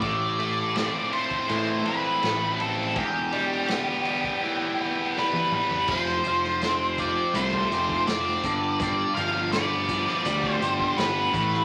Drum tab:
CC |----------------|----------------|x---------------|----------------|
RD |x-x-x-x-x-x-x-x-|x-x-x-x---------|----------------|----------------|
HH |----------------|----------------|--x-x-x-x-x-x-x-|x-x-x-x-x-x-x-x-|
SD |----o-------o---|----o-------o---|-o-oo-------oo--|----o--o----o--o|
T1 |----------------|-------------o--|----------------|----------------|
T2 |----------------|--------------o-|----------------|----------------|
FT |----------------|---------------o|----------------|----------------|
BD |o------o--------|o------o--------|o-----o--o-o--o-|o-----o--o-o--o-|